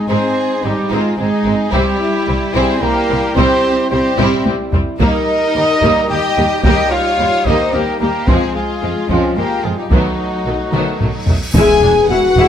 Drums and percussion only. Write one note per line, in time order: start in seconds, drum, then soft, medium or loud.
1.73 taiko medium
2.55 taiko soft
3.36 taiko medium
4.18 taiko low-mid medium
4.45 taiko high medium
4.72 taiko low medium
5.00 taiko medium
5.82 taiko medium
6.63 taiko medium
7.46 taiko medium
8.28 taiko medium
9.09 taiko medium
9.91 taiko medium
10.73 taiko mid medium
11.00 taiko low-mid medium
11.27 taiko low medium
11.54 taiko medium